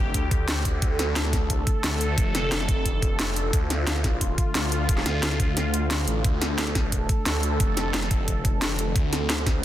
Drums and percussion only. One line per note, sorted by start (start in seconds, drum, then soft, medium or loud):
0.14 kick medium
0.14 closed hi-hat medium
0.31 kick loud
0.31 closed hi-hat medium
0.48 snare loud
0.48 closed hi-hat medium
0.65 kick medium
0.65 closed hi-hat medium
0.82 kick loud
0.82 closed hi-hat medium
0.99 snare soft
0.99 closed hi-hat medium
1.16 snare loud
1.16 closed hi-hat medium
1.25 snare soft
1.33 kick loud
1.33 snare soft
1.33 closed hi-hat medium
1.50 kick medium
1.50 closed hi-hat medium
1.67 kick loud
1.67 closed hi-hat medium
1.84 snare loud
1.84 closed hi-hat medium
2.01 closed hi-hat medium
2.18 kick loud
2.18 closed hi-hat medium
2.35 snare soft
2.35 closed hi-hat medium
2.52 snare loud
2.52 closed hi-hat medium
2.60 snare soft
2.69 kick loud
2.69 closed hi-hat medium
2.85 kick medium
2.85 closed hi-hat medium
3.02 kick loud
3.02 closed hi-hat medium
3.19 snare loud
3.19 closed hi-hat medium
3.36 closed hi-hat medium
3.53 kick loud
3.53 closed hi-hat medium
3.70 snare soft
3.70 closed hi-hat medium
3.87 snare loud
3.87 closed hi-hat loud
3.96 snare soft
4.04 kick loud
4.04 snare soft
4.04 closed hi-hat medium
4.21 kick medium
4.21 closed hi-hat loud
4.38 kick loud
4.38 closed hi-hat medium
4.55 snare loud
4.55 closed hi-hat loud
4.72 closed hi-hat medium
4.89 kick loud
4.89 closed hi-hat medium
4.97 snare soft
5.06 snare soft
5.06 closed hi-hat medium
5.23 snare loud
5.23 closed hi-hat loud
5.31 snare soft
5.40 kick loud
5.40 closed hi-hat medium
5.57 snare medium
5.57 closed hi-hat loud
5.74 closed hi-hat medium
5.91 snare loud
5.91 closed hi-hat loud
6.08 closed hi-hat medium
6.24 kick loud
6.24 closed hi-hat medium
6.42 snare medium
6.42 closed hi-hat medium
6.58 snare loud
6.58 closed hi-hat loud
6.67 snare soft
6.75 kick loud
6.75 snare medium
6.75 closed hi-hat medium
6.92 kick medium
6.92 closed hi-hat loud
7.09 kick loud
7.09 closed hi-hat medium
7.26 snare loud
7.26 closed hi-hat loud
7.43 closed hi-hat medium
7.60 kick loud
7.60 closed hi-hat medium
7.77 snare soft
7.77 closed hi-hat medium
7.94 snare loud
7.94 closed hi-hat medium
8.02 snare soft
8.11 kick loud
8.11 closed hi-hat medium
8.28 kick medium
8.28 closed hi-hat loud
8.45 kick loud
8.45 closed hi-hat medium
8.62 snare loud
8.62 closed hi-hat medium
8.79 closed hi-hat medium
8.96 kick loud
8.96 closed hi-hat medium
9.13 snare soft
9.13 closed hi-hat medium
9.30 snare loud
9.30 closed hi-hat medium
9.38 snare soft
9.46 kick loud
9.46 snare soft
9.46 closed hi-hat medium